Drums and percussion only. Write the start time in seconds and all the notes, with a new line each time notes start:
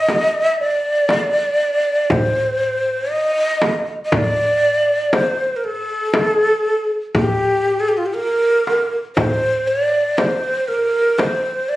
0.09 darbuka tek, frame drum
0.61 darbuka ka
1.09 darbuka tek, frame drum
2.10 frame drum, darbuka dum
2.37 darbuka ka
3.12 darbuka ka
3.62 darbuka tek, frame drum
4.12 frame drum, darbuka dum
5.13 darbuka tek, frame drum
5.65 darbuka ka
6.14 darbuka tek, frame drum
7.15 frame drum, darbuka dum
7.41 darbuka ka
8.16 darbuka ka
8.67 darbuka tek
9.17 frame drum, darbuka dum
10.18 darbuka tek, frame drum
10.68 darbuka ka
11.18 darbuka tek, frame drum